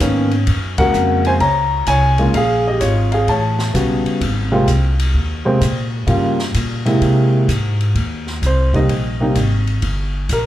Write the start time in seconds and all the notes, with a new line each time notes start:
0.00 G#2 D#3 A#3 B3 C#4, kick, hi-hat pedal, ride
0.31 ride
0.47 F#2, kick, ride
0.78 C#3 G#3 A#3 F#4 A#4 F#5, kick, ride
0.94 F2, hi-hat pedal
1.25 C5 G#5, ride
1.40 C#2 C#5 A#5, kick, ride
1.87 C2 C#5 G#5, kick, hi-hat pedal, ride
2.18 C#3 G#3 A#3 F4, ride
2.34 A#1 G#4 F5, kick, ride
2.67 G4 D#5
2.80 G#1 F4 C#5, kick, hi-hat pedal, ride
3.12 G#4 F5, ride
3.27 A1 C#5 A5, kick, ride
3.59 snare
3.74 B1 C#3 G3 B3 F#4, kick, hi-hat pedal, ride
4.06 muted upright bass stroke, ride
4.21 G#1, kick, ride
4.52 C3 G#3 A#3 F4
4.67 C2, kick, hi-hat pedal, ride
4.99 ride
5.14 D#2, kick
5.45 C3 G#3 A#3 C4
5.61 A#2, kick, hi-hat pedal, ride
6.07 G2 C#3 G3 A#3 F4, kick, ride
6.39 snare
6.54 A#2, kick, hi-hat pedal, ride
6.85 C3 G#3 A#3 E4, ride
7.01 C3, kick, ride
7.48 G#2, kick, hi-hat pedal, ride
7.81 ride
7.95 D#2, kick, ride
8.27 snare
8.42 C2, kick, hi-hat pedal, ride
8.46 C5
8.73 C3 G3 A#3 D#4 D#5, kick, ride
8.88 A#1, kick, ride
9.20 C3 G3 A#3 D#4
9.35 G#1, kick, hi-hat pedal, ride
9.67 ride
9.82 G1, kick, ride
10.29 A#1 A#4, kick, hi-hat pedal, ride